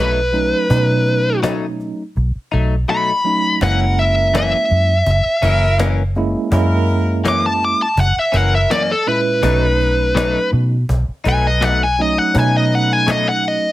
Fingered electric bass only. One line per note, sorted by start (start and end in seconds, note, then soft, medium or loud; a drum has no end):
0.00 0.52 B1 medium
0.70 1.91 B2 medium
2.17 2.32 B1 medium
2.35 muted fingered electric bass stroke soft
2.53 2.83 B1 medium
3.62 4.52 F#1 loud
4.71 5.01 F#2 medium
5.06 5.22 F#1 medium
5.25 muted fingered electric bass stroke soft
5.43 6.34 F#1 medium
6.52 7.73 F#2 medium
7.97 8.13 F#1 loud
8.34 8.64 F#1 medium
9.43 10.34 B1 loud
10.53 10.83 B2 loud
10.89 11.04 B1 medium
11.08 muted fingered electric bass stroke soft
11.26 12.17 B1 loud
12.35 13.57 B2 medium